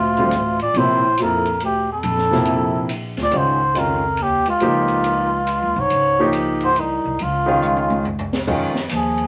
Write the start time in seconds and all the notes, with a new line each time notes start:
Already playing: A#1 D2 F4
0.17 D3 G3 C4 F4, ride
0.31 A1, hi-hat pedal, ride
0.59 A#2 D5, ride
0.74 A#1 A2 C3 F3 A#3 C5, ride
0.78 E4
1.17 F2 F3 A#3 E4 A4, hi-hat pedal, ride
1.22 A#4
1.45 ride
1.60 D2, ride
1.65 G4
1.91 F2 A4
2.03 A#1, ride
2.18 snare
2.31 C3 F3 A#3 E4, snare
2.45 ride
2.89 hi-hat pedal, ride
3.17 D2 A#2, snare, ride
3.23 D5
3.31 C#2 D#3 G#3 C#4 F4, ride
3.36 G#2 C5
3.74 D#3 G#3 C#4 F4, hi-hat pedal, ride
3.79 F2 A#4
4.17 D#2, ride
4.22 G4
4.45 C#2, muted upright bass stroke, ride
4.50 F4
4.60 C#2 F3 A#3 D#4 G4, ride
4.88 ride
5.04 ride
5.47 hi-hat pedal, ride
5.62 D#2
5.76 C2 G#2
5.80 C#5
5.90 C#2, ride
6.19 F3 A#3 D#4 G4
6.33 hi-hat pedal, ride
6.60 G#2 C5, ride
6.76 C2, ride
6.80 D#4
7.05 C2
7.19 C#2 F4, ride
7.46 D#3 G#3 C#4 F4
7.62 hi-hat pedal, high tom
7.76 high tom
7.90 high tom
8.05 floor tom
8.19 floor tom
8.33 snare
8.47 F2 D#3 G#3 C#4 F4, kick, crash
8.75 snare
8.89 D#2 F3, hi-hat pedal, ride
8.96 G#4
9.18 ride